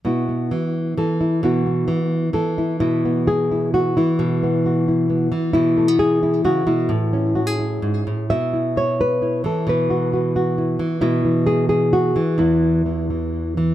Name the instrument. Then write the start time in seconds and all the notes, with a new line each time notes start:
nylon-string guitar
0.05 B2 B3 E4 F#4
0.29 B3
0.51 E3
0.97 E3 A4
1.21 E4
1.43 B2 B3 E4 F#4
1.66 B3
1.88 E3
2.33 E3 A4
2.58 E4
2.80 B2 E4
3.05 B3
3.27 G#4
3.51 E4
3.74 F#4
3.97 E3 E4
4.19 B2
4.43 B3
4.66 F#4
4.88 E4
5.10 B3
5.32 E3
5.53 B2 E4
5.77 A3
5.88 B3
5.99 G#4
6.23 E4
6.44 C#3 F#4
6.67 B2 E4
6.89 A2
7.13 C#4
7.35 F#4
7.47 G#4
7.59 E4
7.82 G#2
8.07 A2
8.30 B2 E5
8.53 E4
8.77 C#5
9.01 B4
9.22 E4
9.44 E3 A4
9.67 B2 B4
9.90 F#4
10.13 F#4
10.36 F#4
10.58 E4
10.79 E3
11.01 B2 E4
11.25 E3
11.47 G#4
11.69 G#4
11.93 F#4
12.16 E3
12.38 E2 E4
12.86 E3
13.10 E3
13.57 E3